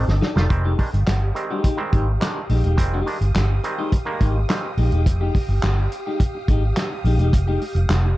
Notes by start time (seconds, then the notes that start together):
Already playing: C4 D#4 A4 C5 D#5 G5 D6
0.08 G1 D4, muted clean electric guitar stroke, snare
0.21 D#4 A4 D5, snare
0.35 F1 D#3 G3 A3 D#4 F4 A4 D5, snare
0.48 F1 D#3 G3 G#3 C4 G4 F5 G5 D#6, muted clean electric guitar stroke, kick, closed hi-hat
0.64 G#3 D#4 G4
0.78 D#3 G3 G#3 D4, muted clean electric guitar stroke, kick, open hi-hat
0.92 G1, muted clean electric guitar stroke, closed hi-hat
1.07 G1, muted clean electric guitar stroke, snare, clap, closed hi-hat
1.21 G#3 C4, muted clean electric guitar stroke
1.35 D#3 G3 G#3 C4, closed hi-hat
1.50 G#3 D#4 G4
1.64 G#3 D#4 G4, kick, closed hi-hat
1.77 D#3 G3 G#3 C4, muted clean electric guitar stroke
1.93 G#1 G#3 D#4 G4, kick, closed hi-hat
2.07 muted clean electric guitar stroke
2.20 D#3 G3 G#3 D4, muted clean electric guitar stroke, snare, clap, closed hi-hat
2.37 muted clean electric guitar stroke
2.49 A#1 G#3 C4 D#4 G4, open hi-hat
2.64 E1 G#3 D#4 G4, closed hi-hat
2.77 F1 D#3 G3 G#3 C4, muted clean electric guitar stroke, kick, closed hi-hat
2.94 G#3 D#4 G4
3.06 D#3 G3 G#3 D4, muted clean electric guitar stroke, open hi-hat
3.21 G1, muted clean electric guitar stroke, closed hi-hat
3.35 G1, muted clean electric guitar stroke, snare, clap, closed hi-hat
3.50 G#3 C4, muted clean electric guitar stroke
3.64 D#3 G3 G#3 C4, closed hi-hat
3.78 G#3 D#4 G4
3.92 muted clean electric guitar stroke, kick, closed hi-hat
4.05 D#3 G3 G#3 A#3, muted clean electric guitar stroke
4.21 G#1 G#3 D#4 G4, kick, closed hi-hat
4.36 muted clean electric guitar stroke
4.49 D#3 G3 G#3 C4, muted clean electric guitar stroke, snare, clap, closed hi-hat
4.63 muted clean electric guitar stroke
4.77 A#1 G#3 C4 D#4 G4, open hi-hat
4.92 E1 G#3 D#4 G4, closed hi-hat
5.06 F1, muted clean electric guitar stroke, kick, closed hi-hat
5.21 G#3 D#4 G4
5.35 muted clean electric guitar stroke, kick, open hi-hat
5.49 G1, muted clean electric guitar stroke
5.63 G1, muted clean electric guitar stroke, snare, clap, closed hi-hat
5.78 muted clean electric guitar stroke
5.92 closed hi-hat
6.07 G#3 D#4 G4
6.20 muted clean electric guitar stroke, kick, closed hi-hat
6.35 muted clean electric guitar stroke
6.48 G#1 G#3 D#4 G4, kick, closed hi-hat
6.63 muted clean electric guitar stroke
6.77 muted clean electric guitar stroke, snare, clap, closed hi-hat
6.91 muted clean electric guitar stroke
7.04 A#1 G#3 D#4 G4, open hi-hat
7.18 E1 G#3 D#4 G4, closed hi-hat
7.33 F1, muted clean electric guitar stroke, kick, closed hi-hat
7.48 G#3 D#4 G4
7.62 muted clean electric guitar stroke, open hi-hat
7.75 F1, muted clean electric guitar stroke, closed hi-hat
7.89 F1, muted clean electric guitar stroke, snare, clap, closed hi-hat
8.05 muted clean electric guitar stroke